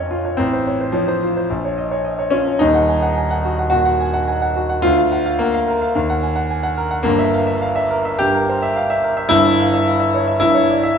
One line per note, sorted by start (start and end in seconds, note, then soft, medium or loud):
0.00 0.40 A#1 medium
0.00 0.40 F2 medium
0.00 0.40 A#3 medium
0.00 0.37 C#4 medium
0.00 0.11 F4 medium
0.00 0.25 C#5 medium
0.00 0.41 D#5 soft
0.11 0.33 F4 medium
0.25 0.38 C#5 medium
0.37 1.47 A1 medium
0.37 0.94 C4 medium
0.53 0.75 C5 soft
0.67 0.80 C#5 soft
0.81 1.03 C5 medium
0.92 2.33 F3 medium
0.92 1.08 C#5 soft
1.08 1.30 C5 medium
1.22 1.45 F4 medium
1.37 1.50 C5 soft
1.50 2.58 A#1 medium
1.65 1.87 C#5 medium
1.78 1.92 D#5 medium
1.91 2.14 C#5 medium
2.05 2.19 D#5 medium
2.19 2.41 C#5 medium
2.30 2.60 C#4 loud
2.30 2.55 F4 medium
2.47 2.61 C#5 medium
2.59 3.69 D#1 medium
2.59 3.70 D#2 medium
2.59 3.72 D#4 loud
2.74 2.98 F#5 medium
2.89 3.03 G#5 soft
3.02 3.26 F#5 medium
3.17 3.31 G#5 soft
3.31 3.53 F#5 medium
3.44 3.67 F#4 medium
3.59 3.81 F#5 medium
3.70 3.95 A#2 medium
3.70 4.54 F#4 loud
3.85 4.08 F#5 medium
4.00 4.14 G#5 medium
4.14 4.36 F#5 medium
4.27 4.42 G#5 medium
4.42 4.64 F#5 medium
4.56 4.78 F#4 medium
4.69 4.84 F#5 medium
4.82 5.92 D2 medium
4.82 5.39 F4 loud
4.98 5.20 F5 medium
5.12 5.26 F#5 medium
5.26 5.48 F5 medium
5.39 6.78 A#3 medium
5.39 5.54 F#5 medium
5.54 5.76 F5 medium
5.68 5.90 A#4 medium
5.81 5.95 F5 medium
5.95 7.03 D#2 medium
6.10 6.31 F#5 medium
6.22 6.36 G#5 medium
6.36 6.58 F#5 medium
6.50 6.64 G#5 medium
6.63 6.86 F#5 medium
6.77 7.00 A#4 medium
6.91 7.05 F#5 medium
7.03 8.16 G1 medium
7.03 8.16 G2 medium
7.03 8.19 A#3 loud
7.19 7.41 E5 medium
7.33 7.47 F5 medium
7.47 7.70 E5 medium
7.62 7.76 F5 medium
7.76 8.00 E5 medium
7.90 8.14 A#4 medium
8.05 8.29 E5 medium
8.19 9.28 G2 medium
8.19 9.30 G4 loud
8.34 8.57 A#4 medium
8.49 8.63 C5 medium
8.62 8.84 E5 medium
8.76 8.90 F5 medium
8.90 9.12 E5 medium
9.04 9.26 A#4 medium
9.17 9.31 E5 medium
9.29 10.37 G1 medium
9.29 10.37 G2 medium
9.29 10.38 E4 loud
9.45 9.67 E5 medium
9.60 9.73 F5 medium
9.74 9.95 E5 medium
9.87 10.00 F5 soft
10.00 10.22 E5 medium
10.14 10.36 C#5 medium
10.27 10.49 E5 medium
10.40 10.98 G2 medium
10.40 10.98 E4 loud
10.55 10.77 C#5 medium
10.70 10.83 D5 medium
10.83 10.98 E5 medium